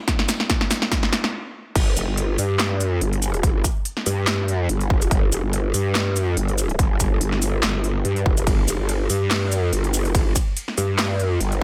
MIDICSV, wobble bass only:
0, 0, Header, 1, 2, 480
1, 0, Start_track
1, 0, Tempo, 419580
1, 88, Time_signature, 4, 2, 24, 8
1, 13309, End_track
2, 0, Start_track
2, 0, Title_t, "Wobble bass"
2, 0, Program_c, 0, 39
2, 2008, Note_on_c, 0, 31, 100
2, 2230, Note_off_c, 0, 31, 0
2, 2248, Note_on_c, 0, 29, 100
2, 2357, Note_off_c, 0, 29, 0
2, 2378, Note_on_c, 0, 31, 95
2, 2710, Note_off_c, 0, 31, 0
2, 2728, Note_on_c, 0, 43, 102
2, 3220, Note_off_c, 0, 43, 0
2, 3220, Note_on_c, 0, 42, 102
2, 3430, Note_off_c, 0, 42, 0
2, 3448, Note_on_c, 0, 31, 100
2, 3910, Note_off_c, 0, 31, 0
2, 3928, Note_on_c, 0, 31, 102
2, 4150, Note_off_c, 0, 31, 0
2, 4648, Note_on_c, 0, 43, 105
2, 5140, Note_off_c, 0, 43, 0
2, 5140, Note_on_c, 0, 42, 105
2, 5350, Note_off_c, 0, 42, 0
2, 5368, Note_on_c, 0, 31, 95
2, 5830, Note_off_c, 0, 31, 0
2, 5848, Note_on_c, 0, 31, 101
2, 6070, Note_off_c, 0, 31, 0
2, 6088, Note_on_c, 0, 29, 101
2, 6197, Note_off_c, 0, 29, 0
2, 6217, Note_on_c, 0, 31, 98
2, 6550, Note_off_c, 0, 31, 0
2, 6568, Note_on_c, 0, 43, 98
2, 7060, Note_off_c, 0, 43, 0
2, 7060, Note_on_c, 0, 42, 98
2, 7270, Note_off_c, 0, 42, 0
2, 7288, Note_on_c, 0, 31, 101
2, 7750, Note_off_c, 0, 31, 0
2, 7768, Note_on_c, 0, 31, 101
2, 7990, Note_off_c, 0, 31, 0
2, 8008, Note_on_c, 0, 31, 100
2, 8230, Note_off_c, 0, 31, 0
2, 8248, Note_on_c, 0, 31, 98
2, 8710, Note_off_c, 0, 31, 0
2, 8728, Note_on_c, 0, 31, 99
2, 9190, Note_off_c, 0, 31, 0
2, 9208, Note_on_c, 0, 43, 100
2, 9430, Note_off_c, 0, 43, 0
2, 9448, Note_on_c, 0, 29, 96
2, 9557, Note_off_c, 0, 29, 0
2, 9578, Note_on_c, 0, 29, 94
2, 9670, Note_off_c, 0, 29, 0
2, 9688, Note_on_c, 0, 31, 102
2, 9910, Note_off_c, 0, 31, 0
2, 9928, Note_on_c, 0, 29, 103
2, 10037, Note_off_c, 0, 29, 0
2, 10058, Note_on_c, 0, 31, 99
2, 10390, Note_off_c, 0, 31, 0
2, 10408, Note_on_c, 0, 43, 95
2, 10899, Note_off_c, 0, 43, 0
2, 10899, Note_on_c, 0, 42, 95
2, 11110, Note_off_c, 0, 42, 0
2, 11128, Note_on_c, 0, 31, 100
2, 11590, Note_off_c, 0, 31, 0
2, 11608, Note_on_c, 0, 31, 101
2, 11830, Note_off_c, 0, 31, 0
2, 12327, Note_on_c, 0, 43, 101
2, 12819, Note_off_c, 0, 43, 0
2, 12819, Note_on_c, 0, 42, 101
2, 13030, Note_off_c, 0, 42, 0
2, 13048, Note_on_c, 0, 31, 100
2, 13309, Note_off_c, 0, 31, 0
2, 13309, End_track
0, 0, End_of_file